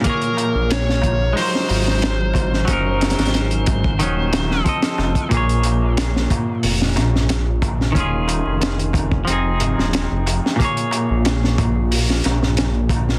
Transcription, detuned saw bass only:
X:1
M:4/4
L:1/16
Q:1/4=91
K:Bbm
V:1 name="Detuned saw bass" clef=bass
z3 B,,,4- B,,, z2 A,,,6 | G,,,3 A,,,4- A,,, E,,,4 z2 F,,, z | B,,,6 z2 F,,,2 B,,,6 | E,,,3 F,,,4- F,,, F,,,3 E,,,2 F,,,2 z |
z3 B,,,6- B,,, B,,,6 |]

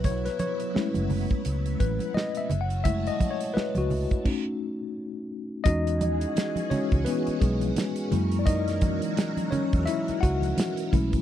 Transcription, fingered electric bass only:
X:1
M:4/4
L:1/16
Q:"Swing 16ths" 1/4=86
K:E
V:1 name="Fingered electric bass" clef=bass
B,,,2 z3 F,,,2 z C,,2 A,,, z3 F,,,2- | F,,,2 z3 C,,2 z8 z | E,,4 z3 C,, z2 B,,,2 z2 F,,2- | F,,4 z3 E,, z2 C,,2 z2 B,,,2 |]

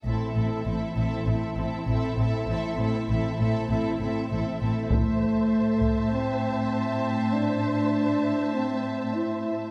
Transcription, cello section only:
X:1
M:4/4
L:1/8
Q:1/4=99
K:Am
V:1 name="Cello section" clef=bass
A,, A,, A,, A,, A,, A,, A,, A,, | A,, A,, A,, A,, A,, A,, A,, A,, | A,,8- | A,,8 |]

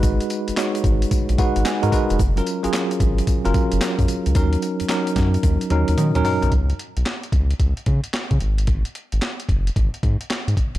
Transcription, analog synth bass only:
X:1
M:4/4
L:1/16
Q:"Swing 16ths" 1/4=111
K:Ebm
V:1 name="Analog synth bass" clef=bass
A,,,2 z A,,, z2 A,,,2 z B,,, z A,,, z A,, z F,,, | G,,,2 z A,,, z2 A,,,2 z G,,, z G,,, z G,, z D,, | E,,2 z G,, z2 G,,2 E,, z E,, E,, E, E,, z C,, | ^C,,2 z =B,,, z2 C,,2 C,, z ^C, z2 C, A,,,2- |
A,,,2 z A,,, z2 G,,,2 A,,, z A,, z2 A,, z F,,, |]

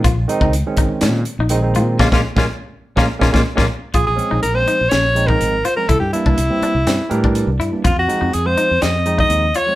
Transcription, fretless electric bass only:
X:1
M:4/4
L:1/16
Q:1/4=123
K:Bbm
V:1 name="Fretless electric bass" clef=bass
B,,,2 z D,,2 z A,,, z B,,2 z B,,,3 B,,2 | B,,, B,,, z B,,, z4 B,,, z B,,, B,,, z B,,, z2 | B,,, B,,, z B,,, B,,,2 z B,,, B,,,4 A,,,2 z2 | C,, =G,, z C,, C,, z2 C,, G,, z =A,,3 C,, G,, z |
F,, F,, z F,, F,,2 z F,, F,,4 E,,2 z2 |]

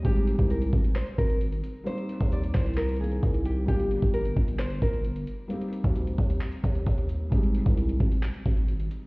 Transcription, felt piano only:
X:1
M:4/4
L:1/8
Q:1/4=132
K:Ablyd
V:1 name="Felt piano"
[G,A,CEG]8 | [G,B,CEG]4- [G,B,CEG] [E,B,CEB]3 | [G,B,DFG]8 | [G,B,CEG]8 |
[G,A,CEG]8 |]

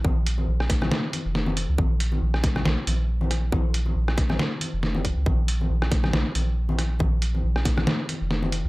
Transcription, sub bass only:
X:1
M:4/4
L:1/16
Q:"Swing 16ths" 1/4=138
K:Bbm
V:1 name="Sub bass" clef=bass
B,,,4 B,,,4 z3 F,,,4 D,, | B,,,4 B,,,4 B,,, z B,,,6 | B,,,4 B,,,4 z3 F,,,4 D,, | B,,,4 B,,,4 B,,, z B,,,6 |
B,,,4 B,,,4 z3 F,,,4 D,, |]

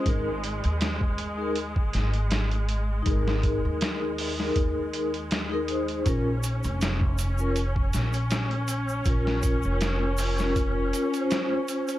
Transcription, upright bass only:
X:1
M:4/4
L:1/16
Q:"Swing 16ths" 1/4=80
K:Bbm
V:1 name="Upright bass" clef=bass
A,,,3 E,,6- E,, A,,,6 | A,,,3 E,,4- E,, E,,8 | B,,,3 F,,,6- F,,, B,,,6 | B,,,3 F,,,6- F,,, z6 |]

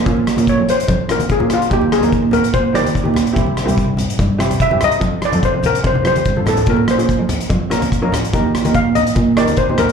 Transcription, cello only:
X:1
M:4/4
L:1/16
Q:"Swing 16ths" 1/4=145
K:Eb
V:1 name="Cello" clef=bass
B,,3 B,,2 F,,3 F,,2 B,,3 B,,3 | E,,3 E,,2 B,,3 B,,2 E,3 B,,3 | C,,3 C,,2 G,,3 G,,2 C,3 G,,3 | F,,3 F,,2 C,3 C,2 F,,2 G,,2 =A,,2 |
B,,3 B,,2 F,,3 F,,2 B,,3 F,,3 | E,,3 E,,2 B,,3 B,,2 E,3 B,,3 |]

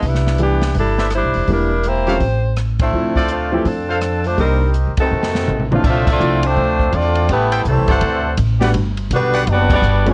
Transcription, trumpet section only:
X:1
M:4/4
L:1/8
Q:"Swing" 1/4=165
K:Dm
V:1 name="Trumpet section"
z4 z [=Bcde] z2 | z3 [GA^cf] z4 | z [FAcd]3 z [FAcf] z2 | [GBc_e]3 z4 z |
[Acde]3 z4 z | z [Aceg] z [Acd^f]3 z [G=Bdf] | z3 [G=Bd^f] z4 |]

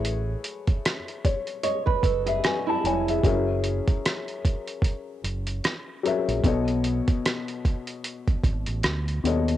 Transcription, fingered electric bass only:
X:1
M:4/4
L:1/16
Q:"Swing 16ths" 1/4=75
K:Alyd
V:1 name="Fingered electric bass" clef=bass
A,,,2 z8 F,,,2 z2 =F,,,2 | F,,,3 z6 z F,,,2 z3 ^A,,, | B,,,3 z6 z G,,, A,,, =D,,2 ^D,,2 |]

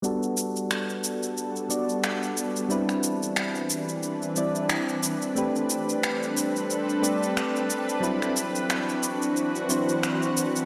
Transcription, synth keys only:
X:1
M:4/4
L:1/16
Q:"Swing 16ths" 1/4=90
K:G
V:1 name="Synth keys"
[G,B,DFA]8- [G,B,DFA]2 [G,B,DFd] z4 z | [G,CDEB]8- [G,CDEB]2 [G,CDEd] z4 z | [A,CDGB]8- [A,CDGB]2 [A,CDGd] z4 z | [F,CDEB]8- [F,CDEB]2 [F,CDEc]2 z4 |]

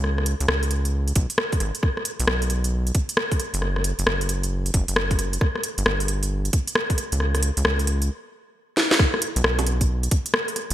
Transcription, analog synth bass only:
X:1
M:4/4
L:1/16
Q:"Swing 16ths" 1/4=134
K:C#phr
V:1 name="Analog synth bass" clef=bass
C,,3 C,, C,,6 B,,, z3 G,,, z | z3 B,,, B,,,6 z4 z F,,,- | F,,,3 F,,, F,,,6 F,,, F,,,4- F,,, | z3 =G,,, G,,,6 z4 z C,,- |
C,,3 C,, C,,4 z8 | z3 B,,, B,,,6 z4 z F,,, |]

